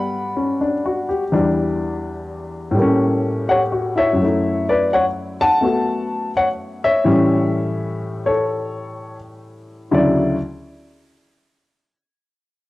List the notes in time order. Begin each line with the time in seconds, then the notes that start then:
Already playing: G2 F#3 G3 A3 B3 D5 F#5 B5
0.37 C#4
0.61 D4
0.86 F#4
1.09 G4
1.32 E2 E3 G3 D4
2.71 A2 G3
2.78 A#3
2.82 C#4
3.48 G4 C#5 F#5
3.72 F#4
3.96 E4 C#5 E5
4.13 F#2 F#3
4.21 A3 E4
4.69 B4 D5
4.93 C#5 F#5
5.41 F#5 A5
5.61 A3 B3 F#4
6.37 C#5 F#5
6.84 C#5 E5
7.04 A2 E3 G3 C#4
8.26 A4 C#5
9.91 D2 C#3 F#3 E4 D5